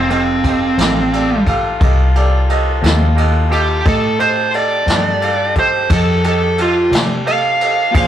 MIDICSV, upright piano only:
0, 0, Header, 1, 2, 480
1, 0, Start_track
1, 0, Tempo, 682594
1, 2707, Time_signature, 12, 3, 24, 8
1, 5678, End_track
2, 0, Start_track
2, 0, Title_t, "Upright piano"
2, 0, Program_c, 0, 0
2, 56, Note_on_c, 0, 67, 59
2, 63, Note_on_c, 0, 69, 51
2, 70, Note_on_c, 0, 75, 65
2, 240, Note_off_c, 0, 67, 0
2, 244, Note_off_c, 0, 69, 0
2, 247, Note_off_c, 0, 75, 0
2, 309, Note_on_c, 0, 67, 59
2, 315, Note_on_c, 0, 69, 53
2, 323, Note_on_c, 0, 75, 54
2, 487, Note_off_c, 0, 67, 0
2, 490, Note_off_c, 0, 69, 0
2, 494, Note_off_c, 0, 75, 0
2, 548, Note_on_c, 0, 67, 57
2, 557, Note_on_c, 0, 69, 51
2, 564, Note_on_c, 0, 75, 58
2, 726, Note_off_c, 0, 67, 0
2, 731, Note_off_c, 0, 69, 0
2, 735, Note_off_c, 0, 75, 0
2, 793, Note_on_c, 0, 67, 63
2, 796, Note_on_c, 0, 69, 60
2, 803, Note_on_c, 0, 74, 68
2, 969, Note_off_c, 0, 67, 0
2, 971, Note_off_c, 0, 69, 0
2, 974, Note_off_c, 0, 74, 0
2, 1035, Note_on_c, 0, 67, 67
2, 1040, Note_on_c, 0, 69, 66
2, 1046, Note_on_c, 0, 77, 75
2, 1210, Note_off_c, 0, 67, 0
2, 1213, Note_off_c, 0, 69, 0
2, 1216, Note_off_c, 0, 77, 0
2, 1266, Note_on_c, 0, 67, 69
2, 1269, Note_on_c, 0, 69, 59
2, 1277, Note_on_c, 0, 75, 69
2, 1446, Note_off_c, 0, 67, 0
2, 1448, Note_off_c, 0, 69, 0
2, 1451, Note_off_c, 0, 75, 0
2, 1516, Note_on_c, 0, 67, 76
2, 1522, Note_on_c, 0, 69, 65
2, 1529, Note_on_c, 0, 74, 79
2, 1691, Note_off_c, 0, 67, 0
2, 1694, Note_off_c, 0, 69, 0
2, 1697, Note_off_c, 0, 74, 0
2, 1749, Note_on_c, 0, 67, 63
2, 1753, Note_on_c, 0, 69, 62
2, 1759, Note_on_c, 0, 75, 76
2, 1928, Note_off_c, 0, 67, 0
2, 1930, Note_off_c, 0, 69, 0
2, 1933, Note_off_c, 0, 75, 0
2, 1988, Note_on_c, 0, 67, 71
2, 1994, Note_on_c, 0, 69, 63
2, 1994, Note_on_c, 0, 75, 68
2, 2167, Note_off_c, 0, 67, 0
2, 2170, Note_off_c, 0, 69, 0
2, 2170, Note_off_c, 0, 75, 0
2, 2219, Note_on_c, 0, 67, 69
2, 2225, Note_on_c, 0, 69, 63
2, 2229, Note_on_c, 0, 75, 71
2, 2403, Note_off_c, 0, 67, 0
2, 2405, Note_off_c, 0, 69, 0
2, 2408, Note_off_c, 0, 75, 0
2, 2454, Note_on_c, 0, 67, 55
2, 2457, Note_on_c, 0, 69, 49
2, 2463, Note_on_c, 0, 75, 61
2, 2641, Note_off_c, 0, 67, 0
2, 2642, Note_off_c, 0, 69, 0
2, 2645, Note_off_c, 0, 75, 0
2, 2707, Note_on_c, 0, 67, 59
2, 2711, Note_on_c, 0, 69, 62
2, 2711, Note_on_c, 0, 75, 75
2, 2887, Note_off_c, 0, 67, 0
2, 2889, Note_off_c, 0, 69, 0
2, 2889, Note_off_c, 0, 75, 0
2, 2942, Note_on_c, 0, 67, 52
2, 2945, Note_on_c, 0, 69, 47
2, 2951, Note_on_c, 0, 75, 66
2, 3125, Note_off_c, 0, 67, 0
2, 3126, Note_off_c, 0, 69, 0
2, 3129, Note_off_c, 0, 75, 0
2, 3190, Note_on_c, 0, 67, 52
2, 3195, Note_on_c, 0, 69, 47
2, 3201, Note_on_c, 0, 75, 61
2, 3369, Note_off_c, 0, 67, 0
2, 3371, Note_off_c, 0, 69, 0
2, 3374, Note_off_c, 0, 75, 0
2, 3433, Note_on_c, 0, 67, 54
2, 3438, Note_on_c, 0, 69, 51
2, 3446, Note_on_c, 0, 75, 61
2, 3610, Note_off_c, 0, 67, 0
2, 3612, Note_off_c, 0, 69, 0
2, 3616, Note_off_c, 0, 75, 0
2, 3662, Note_on_c, 0, 67, 51
2, 3667, Note_on_c, 0, 69, 50
2, 3676, Note_on_c, 0, 77, 55
2, 3845, Note_off_c, 0, 67, 0
2, 3847, Note_off_c, 0, 69, 0
2, 3852, Note_off_c, 0, 77, 0
2, 3910, Note_on_c, 0, 67, 56
2, 3911, Note_on_c, 0, 69, 53
2, 3919, Note_on_c, 0, 75, 62
2, 4088, Note_off_c, 0, 67, 0
2, 4089, Note_off_c, 0, 69, 0
2, 4093, Note_off_c, 0, 75, 0
2, 4148, Note_on_c, 0, 67, 50
2, 4152, Note_on_c, 0, 69, 46
2, 4160, Note_on_c, 0, 75, 65
2, 4328, Note_off_c, 0, 67, 0
2, 4330, Note_off_c, 0, 69, 0
2, 4334, Note_off_c, 0, 75, 0
2, 4391, Note_on_c, 0, 67, 64
2, 4393, Note_on_c, 0, 69, 52
2, 4401, Note_on_c, 0, 75, 62
2, 4569, Note_off_c, 0, 67, 0
2, 4570, Note_off_c, 0, 69, 0
2, 4574, Note_off_c, 0, 75, 0
2, 4627, Note_on_c, 0, 67, 53
2, 4636, Note_on_c, 0, 69, 45
2, 4639, Note_on_c, 0, 75, 52
2, 4807, Note_off_c, 0, 67, 0
2, 4812, Note_off_c, 0, 69, 0
2, 4813, Note_off_c, 0, 75, 0
2, 4861, Note_on_c, 0, 67, 62
2, 4868, Note_on_c, 0, 69, 51
2, 4874, Note_on_c, 0, 74, 60
2, 5044, Note_off_c, 0, 67, 0
2, 5047, Note_off_c, 0, 69, 0
2, 5051, Note_off_c, 0, 74, 0
2, 5100, Note_on_c, 0, 67, 53
2, 5103, Note_on_c, 0, 69, 53
2, 5107, Note_on_c, 0, 75, 61
2, 5283, Note_off_c, 0, 67, 0
2, 5285, Note_off_c, 0, 69, 0
2, 5287, Note_off_c, 0, 75, 0
2, 5350, Note_on_c, 0, 67, 50
2, 5351, Note_on_c, 0, 69, 49
2, 5357, Note_on_c, 0, 75, 54
2, 5529, Note_off_c, 0, 67, 0
2, 5529, Note_off_c, 0, 69, 0
2, 5532, Note_off_c, 0, 75, 0
2, 5582, Note_on_c, 0, 68, 65
2, 5587, Note_on_c, 0, 72, 63
2, 5589, Note_on_c, 0, 74, 64
2, 5678, Note_off_c, 0, 68, 0
2, 5678, Note_off_c, 0, 72, 0
2, 5678, Note_off_c, 0, 74, 0
2, 5678, End_track
0, 0, End_of_file